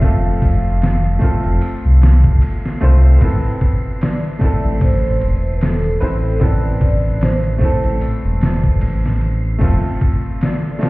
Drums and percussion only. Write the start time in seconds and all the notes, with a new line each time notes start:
0.02 kick, ride
0.42 kick, ride
0.82 snare, ride
1.04 ride
1.21 kick, ride
1.44 ride
1.61 open hi-hat
2.02 snare, ride
2.24 kick
2.42 ride
2.66 snare
2.81 ride
3.21 kick, ride
3.61 kick, ride
4.01 snare, ride
4.41 kick, ride
4.81 kick, ride
5.21 ride
5.61 snare, ride
5.84 ride
6.01 ride
6.41 kick, ride
6.81 kick, ride
7.21 snare, ride
7.44 ride
7.61 kick, ride
7.84 ride
8.01 open hi-hat
8.41 snare, ride
8.64 kick
8.81 ride
9.06 snare
9.21 ride
9.61 kick, ride
10.01 kick, ride
10.41 snare, ride
10.81 snare, ride